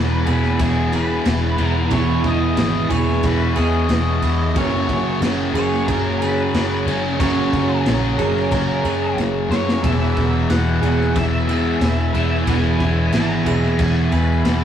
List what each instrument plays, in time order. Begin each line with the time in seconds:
Already playing: picked electric bass E1, clean electric guitar E2 B2 E3 B3 E4 G#4, distorted electric guitar E2 B2 E3, overdriven electric guitar E2 B2 E3, twelve-string acoustic guitar E3 E4 G#4, ambient pad E4 G#4 B4 B5
0.00 lead electric guitar B4
0.26 picked electric bass E1, clean electric guitar E2 B2 E3 B3 E4 G#4, distorted electric guitar B2 E3, twelve-string acoustic guitar G#4, lead electric guitar B4, crash
0.44 snare
0.59 picked electric bass E1, distorted electric guitar E2 B2 E3, twelve-string acoustic guitar E4, lead electric guitar G#4, kick, crash
0.92 distorted electric guitar B2 E3, twelve-string acoustic guitar G#4, lead electric guitar B4, crash
1.25 picked electric bass E1, distorted electric guitar E2 B2 E3, twelve-string acoustic guitar B3, snare, crash
1.58 picked electric bass E1, overdriven electric guitar E2, distorted electric guitar B2 E3, twelve-string acoustic guitar E4, crash
1.62 lead electric guitar A#4
1.90 picked electric bass E1, clean electric guitar E2 B2 E3 B3 E4 G#4, distorted electric guitar E2 B2, twelve-string acoustic guitar E3, lead electric guitar C#5, ambient pad C#6, kick, crash
1.95 distorted electric guitar E3
2.24 picked electric bass E1, distorted electric guitar B2 E3, lead electric guitar D#5, kick, crash
2.57 picked electric bass G#1, distorted electric guitar E2 B2 E3, twelve-string acoustic guitar E4, snare, crash
2.89 picked electric bass E1, clean electric guitar E2 B2 E3 B3 E4 G#4, distorted electric guitar E3, twelve-string acoustic guitar G#4, lead electric guitar C#5, kick, crash
2.94 distorted electric guitar B2
3.08 snare
3.23 picked electric bass E1, distorted electric guitar E2 B2, twelve-string acoustic guitar E4, lead electric guitar B4, kick, crash
3.27 distorted electric guitar E3
3.56 picked electric bass E2, distorted electric guitar B2 E3, twelve-string acoustic guitar G#4, lead electric guitar D#5, crash
3.89 picked electric bass E1, distorted electric guitar E2 B2 E3, twelve-string acoustic guitar B3, snare, crash
4.22 picked electric bass E2, overdriven electric guitar E2, distorted electric guitar B2 E3, twelve-string acoustic guitar E4, crash
4.54 picked electric bass F#1, distorted electric guitar F#2 C#3, clean electric guitar F#3 A#3 C#4 G#4, twelve-string acoustic guitar F#3, ambient pad C#5 F#5 A#5, lead electric guitar C#5, kick, crash
4.59 distorted electric guitar F#3
4.88 picked electric bass F#1, distorted electric guitar C#3 F#3, kick, crash
5.21 picked electric bass F#1, distorted electric guitar F#2 C#3, twelve-string acoustic guitar C#4, snare, crash
5.25 distorted electric guitar F#3
5.54 picked electric bass F#1, distorted electric guitar F#3, clean electric guitar F#3 A#3 C#4 G#4, twelve-string acoustic guitar G#4, lead electric guitar C#5, crash
5.58 distorted electric guitar C#3
5.73 snare
5.86 picked electric bass F#1, distorted electric guitar F#2 C#3, twelve-string acoustic guitar C#4, lead electric guitar A#4, kick, crash
5.91 distorted electric guitar F#3
6.19 distorted electric guitar F#3, twelve-string acoustic guitar G#4, lead electric guitar B4, crash
6.24 distorted electric guitar C#3
6.54 picked electric bass F#1, distorted electric guitar F#2 C#3 F#3, snare, crash
6.86 picked electric bass F#1, overdriven electric guitar F#2, distorted electric guitar F#3, twelve-string acoustic guitar C#4, crash
6.90 distorted electric guitar C#3
7.19 picked electric bass F#1, distorted electric guitar F#2 C#3, clean electric guitar F#3 A#3 C#4 G#4, twelve-string acoustic guitar F#3, lead electric guitar C#5, kick, crash
7.23 distorted electric guitar F#3
7.52 picked electric bass F#1, distorted electric guitar C#3 F#3, kick, crash
7.85 picked electric bass A#1, distorted electric guitar F#2 C#3 F#3, twelve-string acoustic guitar C#4, snare, crash
8.18 distorted electric guitar C#3 F#3, clean electric guitar F#3 A#3 C#4 G#4, twelve-string acoustic guitar G#4, lead electric guitar A#4, kick, crash
8.36 snare
8.51 picked electric bass F#1, distorted electric guitar F#2 C#3 F#3, twelve-string acoustic guitar C#4, lead electric guitar A#4, kick, crash
8.83 picked electric bass F#2, distorted electric guitar C#3 F#3, twelve-string acoustic guitar G#4, crash
9.16 picked electric bass F#1, distorted electric guitar F#2 C#3 F#3, twelve-string acoustic guitar A#3, snare
9.49 picked electric bass F#2, overdriven electric guitar F#2, distorted electric guitar C#3 F#3, twelve-string acoustic guitar C#4, lead electric guitar C#5, snare
9.69 snare
9.82 picked electric bass E1, clean electric guitar E2 B2 E3 B3 E4 G#4, distorted electric guitar E2 B2, twelve-string acoustic guitar E3, ambient pad B4 E5 G#5, lead electric guitar E5, kick, crash
9.87 distorted electric guitar E3
10.16 picked electric bass E1, distorted electric guitar B2 E3, kick, crash
10.48 picked electric bass E1, distorted electric guitar E2 B2, twelve-string acoustic guitar E4, lead electric guitar F#5, snare, crash
10.53 distorted electric guitar E3
10.81 picked electric bass E1, clean electric guitar E2 B2 E3 B3 E4 G#4, distorted electric guitar E3, twelve-string acoustic guitar G#4, crash
10.87 distorted electric guitar B2
11.00 snare
11.16 picked electric bass E1, distorted electric guitar E2 B2 E3, twelve-string acoustic guitar E4, lead electric guitar E5, kick, crash
11.48 distorted electric guitar B2 E3, twelve-string acoustic guitar G#4, crash
11.81 picked electric bass E1, distorted electric guitar E2 B2 E3, twelve-string acoustic guitar B3, snare, crash
12.14 picked electric bass E1, overdriven electric guitar E2, distorted electric guitar B2 E3, twelve-string acoustic guitar E4, lead electric guitar E5, crash
12.46 picked electric bass E1, clean electric guitar E2 B2 E3 B3 E4 G#4, distorted electric guitar E2 B2 E3, twelve-string acoustic guitar E3, lead electric guitar G#5, kick, crash
12.80 picked electric bass E1, distorted electric guitar B2 E3, kick, crash
13.12 picked electric bass G#1, distorted electric guitar E2 B2 E3, twelve-string acoustic guitar E4, lead electric guitar A#5, snare, crash
13.45 picked electric bass E1, clean electric guitar E2 B2 E3 B3 E4 G#4, distorted electric guitar B2 E3, twelve-string acoustic guitar G#4, kick, crash
13.64 snare
13.78 picked electric bass E1, distorted electric guitar E2 B2 E3, twelve-string acoustic guitar E4, lead electric guitar G#5, kick, crash
14.11 picked electric bass E2, distorted electric guitar B2 E3, twelve-string acoustic guitar G#4, lead electric guitar B4, crash
14.44 picked electric bass E1, distorted electric guitar E2 B2 E3, twelve-string acoustic guitar B3, snare, crash